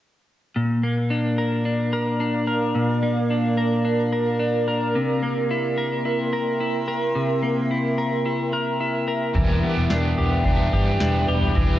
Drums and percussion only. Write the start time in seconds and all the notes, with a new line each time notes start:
9.35 kick, floor tom
9.90 snare
10.18 floor tom
10.45 kick, floor tom
10.73 kick
11.00 snare
11.42 floor tom
11.55 kick, floor tom